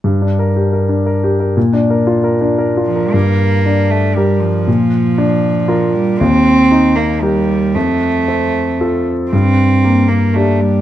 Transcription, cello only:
\new Staff \with { instrumentName = "Cello" } { \time 3/4 \key g \minor \tempo 4 = 117 r2. | r2 r8 f8 | bes4. a8 g8 f8~ | f2~ f8 g8 |
c'4. bes8 g4 | a2~ a8 r8 | c'4. bes8 a8 g8 | }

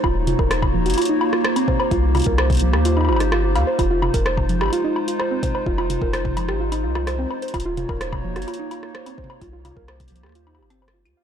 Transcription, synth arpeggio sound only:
\new Staff \with { instrumentName = "Synth arpeggio sound" } { \time 4/4 \key f \minor \tempo 4 = 128 f'16 r16 f'16 bes'16 c''16 r16 f16 ges'16 f'16 ees'16 f'16 f'16 c''16 c'16 c''16 c''16 | f'16 r16 f'16 bes'16 c''16 r16 f16 g'16 f'16 ees'16 f'16 ees'16 f'16 f'16 f''16 c''16 | f'16 f'16 f'16 bes'16 c''16 r16 f16 g'16 f'16 ees'16 f'16 f'16 c''16 c'16 c''16 c''16 | f'16 f'16 f'16 bes'16 c''16 r16 f16 g'16 f'16 ees'16 f'16 f'16 c''16 c'16 c''16 c''16 |
f'16 f'16 f'16 bes'16 c''16 r16 f16 ges'16 f'16 ees'16 f'16 f'16 c''16 c'16 c''16 c''16 | f'16 f'16 f'16 bes'16 c''16 r16 f16 g'16 f'16 ees'16 g'16 c'16 c''16 f'16 f'16 f''16 | }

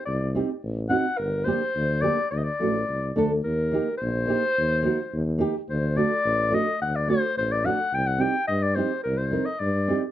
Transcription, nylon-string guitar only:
\new Staff \with { instrumentName = "Nylon-string guitar" } { \time 2/4 \tempo 4 = 107 r8 <c' ees' g'>16 r8. <c' ees' fis'>16 r16 | r8 <bes d' g'>16 r8. <bes d' g'>16 r16 | r8 <a d' fis'>16 r8. <a d' a'>16 r16 | r8 <bes ees' g'>16 r8. <bes ees' g'>16 r16 |
r8 <bes ees' fis'>16 r8. <bes ees' g'>16 r16 | r8 <a d' fis'>16 r8. <a d' fis'>16 r16 | r8 <a d' fis'>16 r8. <a d' fis'>16 r16 | r8 <c' ees' g'>16 r8. <c' ees' g'>16 r16 |
r8 <c' ees' bes'>16 r8. <c' ees' g'>16 r16 | }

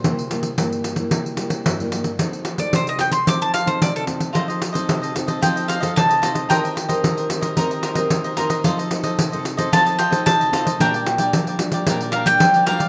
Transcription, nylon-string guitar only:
\new Staff \with { instrumentName = "Nylon-string guitar" } { \time 4/4 \key f \mixolydian \tempo 4 = 112 << { <g bes e'>16 r16 <g bes e'>16 r16 <g bes e'>8. <g bes e'>8. <g bes e'>8. <g bes e'>16 <g bes e'>16 r16 | <c' ees' a'>8 r16 <c' ees' a'>8. <c' ees' a'>16 r16 <c' ees' a'>8 r16 <c' ees' a'>8. <c' ees' a'>8 | <c' ees' a'>8 r16 <c' ees' a'>8. <c' ees' a'>8 <c' ees' a'>8. <c' ees' a'>8. <c' ees' a'>8 | <c' g' bes'>8 r16 <c' g' bes'>8. <c' g' bes'>8 <c' g' bes'>8. <c' g' bes'>8. <c' g' bes'>16 r16 |
<c' ees' a'>8 <c' ees' a'>8. <c' ees' a'>8 <c' ees' a'>16 <c' ees' a'>8 r16 <c' ees' a'>8. <c' ees' a'>16 r16 | <g d' f'>8 r16 <g d' f'>8. <g d' f'>8 <g d' f'>8. <g d' f'>8. <g d' f'>16 r16 | } \\ { c4 g,4 c4 g,4 | f4 c4 f4 c4 | f4 c4 f4 c4 | ees4 ees4 ees4 ees4 |
f4 c4 f4 c4 | bes,4 f4 bes,4 f4 | } >> }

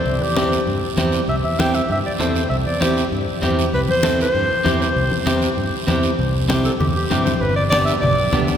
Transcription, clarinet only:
\new Staff \with { instrumentName = "Clarinet" } { \time 4/4 \key c \major \tempo 4 = 196 c''8 g'2 r4. | e''8 e''8 g''8 e''8 e''8 d''8 c''4 | e''8 d''8 c''4 r2 | b'8 c''4 c''2 c''8~ |
c''2. r4 | r4. a'8 g'8 g'4 c''8 | b'8 d''8 d''8 e''8 d''4. r8 | }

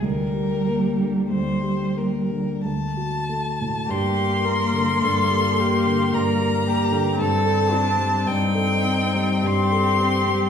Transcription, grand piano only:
\new Staff \with { instrumentName = "Grand piano" } { \clef bass \time 3/4 \key g \minor \tempo 4 = 53 d,16 g'16 bes16 d16 d,16 g'16 bes16 d16 d,16 fis'16 a16 a,16 | g,16 g'16 bes16 d16 g,16 g'16 bes16 d16 g,16 g'16 bes16 d16 | g,16 a'16 c'16 g16 g,16 a'16 c'16 g16 g,16 a'16 c'16 g16 | }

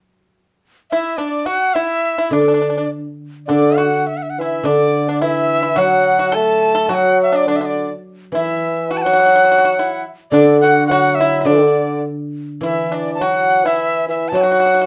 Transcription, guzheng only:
\new Staff \with { instrumentName = "Guzheng" } { \clef bass \time 2/4 \tempo 4 = 106 r2 | r2 | d2 | d2 |
d2 | fis2 | fis2~ | fis8 e4.~ |
e4. r8 | d2 | d2 | e2~ |
e4 fis4 | }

